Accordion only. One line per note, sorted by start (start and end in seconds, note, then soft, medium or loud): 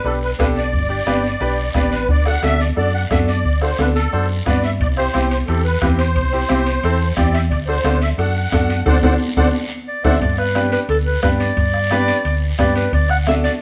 0.05 0.13 A4 medium
0.23 0.30 B4 medium
0.39 0.47 B4 medium
0.57 1.71 D5 medium
1.76 1.93 D5 medium
1.92 2.08 B4 medium
2.10 2.27 D5 medium
2.26 2.42 F#5 medium
2.44 2.61 E5 loud
2.60 2.68 D5 medium
2.77 2.93 D5 medium
2.94 3.02 F#5 medium
3.11 3.18 E5 medium
3.28 3.59 D5 medium
3.62 3.79 C5 medium
3.80 3.87 B4 medium
3.95 4.27 A4 medium
4.48 4.63 D5 medium
4.64 4.71 E5 medium
4.80 4.88 D5 medium
4.97 5.28 C5 medium
5.29 5.37 C5 medium
5.47 5.63 A4 medium
5.65 5.79 B4 medium
5.80 5.88 B4 medium
5.98 7.13 C5 medium
7.16 7.34 D5 medium
7.33 7.41 E5 medium
7.50 7.58 D5 medium
7.67 7.99 C5 medium
8.02 8.09 E5 medium
8.18 8.82 F#5 medium
8.87 8.97 C5 medium
8.87 8.98 D5 medium
8.87 8.97 F#5 medium
9.03 9.14 C5 medium
9.03 9.14 D5 medium
9.03 9.14 F#5 medium
9.38 9.48 C5 medium
9.38 9.48 D5 medium
9.38 9.48 F#5 medium
10.04 10.15 C5 medium
10.04 10.16 D5 medium
10.04 10.15 F#5 medium